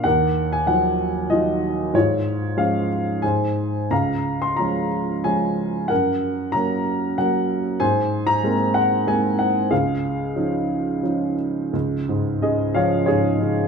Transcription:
<<
  \new Staff \with { instrumentName = "Grand piano" } { \time 3/4 \key des \major \tempo 4 = 94 << { ges''8. aes''16 ges''4 ees''4 | des''4 f''4 aes''4 | bes''8. c'''16 bes''4 aes''4 | ges''4 bes''4 ges''4 |
aes''8. bes''8. ges''8 aes''8 ges''8 | f''2~ f''8 r8 | r4 ees''8 f''8 des''4 | } \\ { bes'4. r4. | f'4. r8 c''4 | f''4. r4. | bes'4. r4. |
c''4. r4. | aes'2~ aes'8 r8 | r4 aes'8 des''8 aes'4 | } >> }
  \new Staff \with { instrumentName = "Grand piano" } { \clef bass \time 3/4 \key des \major ees,4 <f ges ees'>4 <ges ees' f'>4 | aes,4 <f aes des'>4 aes,4 | des,4 <f aes des'>4 <f aes des'>4 | ges,4 <ges bes des'>4 <ges bes des'>4 |
aes,4 <aes bes c'>4 <aes bes c'>4 | des,4 <f des' ees'>4 <f des' ees'>4 | des,8 aes,8 des8 f8 aes,8 des8 | }
>>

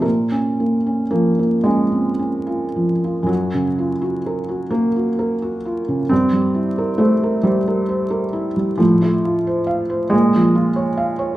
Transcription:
<<
  \new Staff \with { instrumentName = "Felt piano" } { \time 6/8 \key bes \minor \tempo 4. = 44 bes,16 des'16 bes16 des'16 f16 bes16 des'16 c'16 des'16 f'16 f16 f'16 | ges,16 des16 f'16 ges'16 bes'16 ges'16 bes'16 ges'16 bes'16 ges'16 f'16 des16 | g,16 g16 e'16 bes'16 c''16 bes'16 c''16 bes'16 c''16 bes'16 e'16 g16 | a,16 a16 f'16 c''16 f''16 c''16 bes,16 f16 f'16 des''16 f''16 des''16 | }
  \new Staff \with { instrumentName = "Felt piano" } { \clef bass \time 6/8 \key bes \minor bes'4 bes8 aes4. | ges4. bes4. | c'4 a8 g4. | f4. aes4. | }
>>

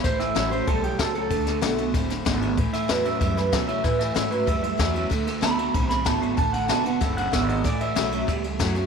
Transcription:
<<
  \new Staff \with { instrumentName = "Clean electric guitar" } { \time 4/4 \key a \major \tempo 4 = 189 c''8 e''4 c''8 a'8 g'8 a'8 a'8~ | a'4. r2 r8 | r8 e''8 b'8 e''8 e''8 b'8 e''8 e''8 | b'8 e''8 e''8 b'8 e''8 e''4.~ |
e''8 r8 b''4 r8 b''8 a''8 b''8 | a''8 fis''8 a''8 fis''8 e''8 fis''8 e''8 dis''8 | d''8 e''2 r4. | }
  \new Staff \with { instrumentName = "Steel-string acoustic guitar" } { \time 4/4 \key a \major << { r4 <e a cis' fis'>8 <cis' fis'>8 r2 | r4 <d a b fis'>8 <b fis'>8 r4 <d a b fis'>8 <b fis'>8 | r4 <e a cis' fis'>8 <cis' fis'>8 r4 <e a cis' fis'>8 <cis' fis'>8 | r4 <e a cis' fis'>8 <cis' fis'>8 r4 <e a cis' fis'>8 <cis' fis'>8 |
r4 <d a b fis'>8 <b fis'>8 r4 <d a b fis'>8 <b fis'>8 | r4 <d a b fis'>8 <b fis'>8 r4 <d a b fis'>8 <b fis'>8 | r4 <e a cis' fis'>8 <cis' fis'>8 r4 <e a cis' fis'>8 <cis' fis'>8 | } \\ { a,2 b,4 cis4 | d2 a,2 | a,2 e,2 | a,2 e,2 |
d2 a,2 | d2 a,2 | a,2 e,2 | } >> }
  \new Staff \with { instrumentName = "Clean electric guitar" } { \clef bass \time 4/4 \key a \major <a, e>8 <a, e>8 <a, fis>8 <a, fis>8 <a, g>8 <a, g>8 <a, fis>8 <a, fis>8 | <d a>8 <d a>8 <d b>8 <d b>8 <d c'>8 <d c'>8 <d b>8 <d b>8 | <a, e>8 <a, e>8 <a, fis>8 <a, fis>8 <a, g>8 <a, g>8 <a, fis>8 <a, fis>8 | <a, e>8 <a, e>8 <a, fis>8 <a, fis>8 <a, g>8 <a, g>8 <a, fis>8 <a, fis>8 |
<d a>8 <d a>8 <d b>8 <d b>8 <d c'>8 <d c'>8 <d b>8 <d b>8 | <d a>8 <d a>8 <d b>8 <d b>8 <d c'>8 <d c'>8 <d b>8 <d b>8 | <a, e>8 <a, e>8 <a, fis>8 <a, fis>8 <a, g>8 <a, g>8 <a, fis>8 <a, fis>8 | }
  \new Staff \with { instrumentName = "Upright bass" } { \clef bass \time 4/4 \key a \major a,,4 a,,4 b,,4 cis,4 | d,4 b,,4 fis,,4 gis,,4 | a,,8 r8 e,4 fis,4 b,4 | a,4 gis,4 fis,4 e,4 |
d,4 cis,4 b,,4 gis,,4 | a,,4 e,,4 fis,,4 gis,,4 | a,,4 b,,4 cis,4 fis,4 | }
  \new DrumStaff \with { instrumentName = "Drums" } \drummode { \time 4/4 <bd cymr sn>8 <cymr sn>8 <cymr sn>8 cymr8 <bd cymr>8 cymr8 <bd cymr sn>8 cymr8 | <bd cymr>8 <cymr sn>8 <cymr sn>8 cymr8 <bd cymr sn>8 <cymr sn>8 <bd cymr sn>8 cymr8 | <bd cymr>8 <cymr sn>8 <cymr sn>8 cymr8 <bd cymr sn>8 <cymr sn>8 <bd cymr sn>8 cymr8 | <bd cymr sn>8 <cymr sn>8 <cymr sn>8 cymr8 <bd cymr>8 cymr8 <bd cymr sn>8 cymr8 |
<bd cymr sn>8 <cymr sn>8 <cymr sn>8 cymr8 <bd cymr>8 <cymr sn>8 <bd cymr sn>8 cymr8 | <bd cymr>8 cymr8 <cymr sn>8 cymr8 <bd cymr sn>8 cymr8 <bd cymr sn>8 cymr8 | <bd cymr sn>8 cymr8 <cymr sn>8 cymr8 <bd cymr sn>8 cymr8 <bd cymr sn>8 cymr8 | }
>>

